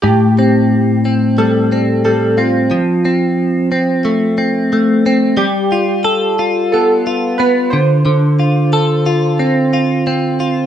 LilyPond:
<<
  \new Staff \with { instrumentName = "Synth keys" } { \time 4/4 \key a \minor \tempo 4 = 90 g'4. r8 a'4 a'8 f'8~ | f'2.~ f'8 r8 | g'4. r8 a'4 b'8 c''8~ | c''2.~ c''8 r8 | }
  \new Staff \with { instrumentName = "Clean electric guitar" } { \time 4/4 \key a \minor a,8 c'4 c'8 g8 c'8 g8 c'8 | f8 c'4 c'8 a8 c'8 a8 c'8 | g8 f'8 a'8 f'8 b8 f'8 b8 d8 | d8 f'8 a'8 f'8 c'8 f'8 c'8 f'8 | }
>>